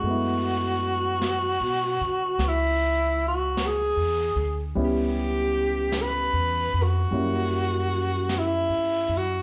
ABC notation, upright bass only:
X:1
M:4/4
L:1/8
Q:"Swing" 1/4=51
K:F#m
V:1 name="Upright bass" clef=bass
F,,2- (3F,, B,, C, C,,2- (3C,, E,, D,, | C,,2- (3C,, E,, =F,, ^F,,2- (3F,, =G,, F,, |]